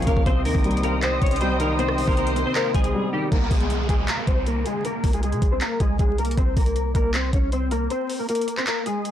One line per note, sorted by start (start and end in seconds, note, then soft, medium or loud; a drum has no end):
0.00 0.28 A#2 medium
0.00 0.26 C3 loud
0.00 0.28 F3 medium
0.00 0.26 A#3 medium
0.00 0.26 C#4 loud
0.00 0.25 A#4 medium
0.00 0.25 C#5 medium
0.00 0.23 F5 medium
0.00 0.25 C#6 medium
0.00 closed hi-hat medium
0.07 0.16 C2 loud
0.07 0.26 C#3 medium
0.07 0.25 A#3 medium
0.07 0.25 A#4 medium
0.07 0.25 F5 medium
0.07 kick loud
0.07 closed hi-hat medium
0.17 0.26 C2 loud
0.17 kick loud
0.26 0.47 C2 loud
0.26 1.22 C3 loud
0.26 0.44 C4 medium
0.26 0.44 C5 loud
0.26 3.29 C5 medium
0.26 3.29 D#5 medium
0.26 3.29 G5 medium
0.26 3.29 D#6 medium
0.26 kick loud
0.26 closed hi-hat medium
0.45 0.54 D#2 loud
0.45 1.41 D#3 medium
0.45 0.82 A#3 medium
0.45 0.81 A#4 medium
0.45 open hi-hat medium
0.55 1.19 C2 loud
0.55 kick loud
0.64 1.39 G3 medium
0.64 closed hi-hat medium
0.71 closed hi-hat medium
0.77 closed hi-hat soft
0.83 1.02 A#3 medium
0.83 1.79 C4 medium
0.83 1.01 A#4 medium
0.83 closed hi-hat medium
1.02 1.21 C4 medium
1.02 1.98 C5 medium
1.02 1.21 C5 loud
1.02 clap loud
1.02 closed hi-hat medium
1.22 2.04 C2 loud
1.22 1.40 C#4 medium
1.22 1.40 C#5 medium
1.22 kick loud
1.22 closed hi-hat medium
1.26 closed hi-hat medium
1.31 closed hi-hat medium
1.36 closed hi-hat medium
1.40 2.36 G3 loud
1.40 1.59 C4 medium
1.40 1.59 C5 medium
1.40 1.59 G5 medium
1.40 closed hi-hat medium
1.60 1.97 D#3 medium
1.60 1.78 A#3 medium
1.60 1.78 A#4 medium
1.60 1.78 D#5 medium
1.60 closed hi-hat medium
1.79 2.74 C3 loud
1.79 2.06 C4 medium
1.79 2.06 C5 loud
1.79 3.28 C5 loud
1.79 closed hi-hat medium
1.88 cross-stick medium
1.98 2.94 D#3 medium
1.98 open hi-hat medium
2.08 2.44 C2 loud
2.08 2.17 A#3 medium
2.08 2.16 A#4 medium
2.08 kick loud
2.17 2.45 A#3 medium
2.17 2.44 A#4 medium
2.17 closed hi-hat medium
2.27 closed hi-hat soft
2.36 3.32 C4 loud
2.36 closed hi-hat medium
2.46 2.55 C4 medium
2.46 2.55 C5 medium
2.55 2.74 A#3 medium
2.55 2.73 A#4 medium
2.55 3.32 C5 medium
2.55 clap loud
2.55 closed hi-hat medium
2.75 2.93 C2 loud
2.75 3.11 G#3 medium
2.75 3.10 G#4 medium
2.75 kick medium
2.75 closed hi-hat medium
2.84 closed hi-hat medium
2.93 3.32 G3 medium
3.13 3.32 D#3 medium
3.13 3.31 G3 medium
3.13 3.31 G4 medium
3.32 3.50 C2 loud
3.32 3.50 A#3 medium
3.32 3.50 A#4 medium
3.32 kick loud
3.32 closed hi-hat medium
3.32 downlifter medium
3.51 3.88 C2 loud
3.51 3.87 G#3 medium
3.51 3.87 G#4 medium
3.51 kick medium
3.51 closed hi-hat medium
3.51 open hi-hat medium
3.60 closed hi-hat soft
3.70 closed hi-hat medium
3.89 4.07 C2 loud
3.89 4.08 G#3 medium
3.89 4.07 G#4 medium
3.89 kick medium
3.89 closed hi-hat medium
4.08 4.27 A#3 medium
4.08 4.26 A#4 medium
4.08 clap loud
4.08 closed hi-hat medium
4.27 4.64 C2 loud
4.27 4.46 C4 medium
4.27 4.45 C5 medium
4.27 kick medium
4.27 closed hi-hat medium
4.46 4.65 A#3 medium
4.46 4.65 A#4 medium
4.46 closed hi-hat medium
4.66 4.84 G#3 medium
4.66 4.84 G#4 medium
4.66 closed hi-hat medium
4.85 5.12 A#3 medium
4.85 5.12 A#4 loud
4.85 closed hi-hat medium
5.04 5.34 C2 loud
5.04 kick medium
5.04 closed hi-hat soft
5.04 open hi-hat medium
5.13 5.23 G#3 medium
5.13 5.22 G#4 medium
5.13 closed hi-hat medium
5.23 5.50 G#3 medium
5.23 5.50 G#4 medium
5.23 closed hi-hat medium
5.32 5.42 C3 medium
5.32 closed hi-hat soft
5.42 5.60 C2 loud
5.42 kick loud
5.42 closed hi-hat medium
5.52 5.61 C4 medium
5.52 5.61 C5 medium
5.61 5.80 A#3 medium
5.61 5.79 A#4 medium
5.61 clap loud
5.61 closed hi-hat medium
5.80 5.99 C2 loud
5.80 5.99 G#3 medium
5.80 5.98 G#4 medium
5.80 kick medium
5.80 closed hi-hat medium
5.99 6.36 C2 loud
5.99 6.18 G#3 medium
5.99 6.17 G#4 medium
5.99 kick loud
5.99 closed hi-hat medium
6.18 6.37 A#3 medium
6.18 6.36 A#4 medium
6.18 closed hi-hat medium
6.25 closed hi-hat medium
6.31 closed hi-hat medium
6.37 6.56 C2 loud
6.37 6.56 C4 medium
6.37 6.56 C5 loud
6.37 kick loud
6.37 closed hi-hat medium
6.57 6.93 C2 loud
6.57 6.93 A#3 medium
6.57 6.93 A#4 medium
6.57 kick medium
6.57 closed hi-hat medium
6.57 open hi-hat medium
6.66 closed hi-hat soft
6.76 closed hi-hat medium
6.95 7.32 C2 loud
6.95 7.13 A#3 medium
6.95 7.13 A#4 medium
6.95 kick medium
6.95 closed hi-hat medium
7.14 7.32 C4 medium
7.14 7.32 C5 medium
7.14 clap loud
7.14 closed hi-hat medium
7.33 7.88 C2 loud
7.33 7.52 C#4 medium
7.33 7.51 C#5 medium
7.33 kick medium
7.33 closed hi-hat medium
7.52 7.71 C4 medium
7.52 7.70 C5 medium
7.52 closed hi-hat medium
7.71 7.90 A#3 medium
7.71 7.89 A#4 medium
7.71 closed hi-hat medium
7.90 8.18 C4 medium
7.90 8.17 C5 loud
7.90 closed hi-hat medium
8.10 open hi-hat medium
8.19 8.28 A#3 medium
8.19 8.27 A#4 medium
8.29 8.56 A#3 medium
8.29 8.56 A#4 medium
8.29 closed hi-hat medium
8.35 closed hi-hat medium
8.41 closed hi-hat medium
8.48 closed hi-hat medium
8.57 8.67 C4 medium
8.57 8.66 C5 medium
8.57 clap medium
8.67 8.85 A#3 medium
8.67 8.85 A#4 medium
8.67 clap loud
8.67 closed hi-hat medium
8.86 9.11 G#3 medium
8.86 9.11 G#4 medium
8.86 closed hi-hat medium
9.05 closed hi-hat medium